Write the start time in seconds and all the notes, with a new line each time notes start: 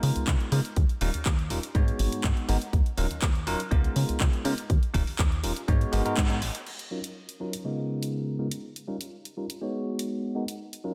Already playing: G#3 B3 D#4 F4 A#4
0.03 C#3, open hi-hat
0.16 C#2, closed hi-hat
0.27 C#2, kick, clap, closed hi-hat
0.40 closed hi-hat
0.52 C#3 G#3 B3 D#4 F4 A#4, open hi-hat
0.65 closed hi-hat
0.76 D#2, kick, closed hi-hat
0.89 closed hi-hat
1.01 D#1 G3 C#4 D#4 F4 A#4, open hi-hat
1.14 D#2, closed hi-hat
1.26 D#2, kick, clap, closed hi-hat
1.39 closed hi-hat
1.50 D#1 G3 C#4 D#4 F4 A#4, open hi-hat
1.63 closed hi-hat
1.74 G#2 G#3 B3 D#4 F#4 C#5, kick, closed hi-hat
1.88 closed hi-hat
1.99 G#1, open hi-hat
2.12 G#2, closed hi-hat
2.24 G#2, kick, clap, closed hi-hat
2.37 closed hi-hat
2.48 G#1 G#3 B3 D#4 F#4 A#4, open hi-hat
2.62 closed hi-hat
2.73 D#2, kick, closed hi-hat
2.86 closed hi-hat
2.97 D#1 F#3 C#4 D#4 F4 A#4, open hi-hat
3.11 D#2, closed hi-hat
3.22 D#2, kick, clap, closed hi-hat
3.35 closed hi-hat
3.47 D#1 F#3 C#4 D#4 F4 A#4, open hi-hat
3.60 closed hi-hat
3.71 C#2 G#3 B3 D#4 F4 A#4, kick, closed hi-hat
3.84 closed hi-hat
3.96 C#3, open hi-hat
4.09 C#2, closed hi-hat
4.20 C#2, kick, clap, closed hi-hat
4.33 closed hi-hat
4.44 C#3 G#3 B3 D#4 F4 A#4, open hi-hat
4.58 closed hi-hat
4.70 D#2, kick, closed hi-hat
4.83 closed hi-hat
4.94 D#1 G3 C#4 D#4 F4 A#4, kick, open hi-hat
5.07 D#2, open hi-hat
5.19 D#2, kick, clap, closed hi-hat
5.32 closed hi-hat
5.43 D#1 G3 C#4 D#4 F4 A#4, open hi-hat
5.56 closed hi-hat
5.68 G#2 G#3 B3 D#4 F#4 C#5, kick, closed hi-hat
5.81 closed hi-hat
5.92 G#1 G#3 B3 D#4 F#4 A#4, open hi-hat
6.05 G#2 G#3 B3 D#4 F#4 A#4, closed hi-hat
6.17 G#2, kick, clap, closed hi-hat
6.30 G#3 B3 D#4 F#4 A#4, closed hi-hat
6.42 G#1, open hi-hat
6.55 closed hi-hat
6.67 crash
6.79 closed hi-hat
6.91 F#3 C#4 D#4 F4 A#4
7.04 closed hi-hat
7.29 closed hi-hat
7.40 F#3 C#4 D#4 F4 A#4
7.53 closed hi-hat
7.64 C#3 G#3 B3 D#4 F4 A#4
8.03 closed hi-hat
8.39 C#3 G#3 B3 D#4 F4 A#4
8.51 closed hi-hat
8.76 closed hi-hat
8.87 G3 C#4 D#4 F4 A#4
9.01 closed hi-hat
9.25 closed hi-hat
9.37 G3 C#4 D#4 F4 A#4
9.50 closed hi-hat
9.61 G#3 B3 D#4 F#4 C#5
9.99 closed hi-hat
10.35 G#3 B3 D#4 F#4 A#4
10.48 closed hi-hat
10.73 closed hi-hat
10.84 F#3 C#4 D#4 F4 A#4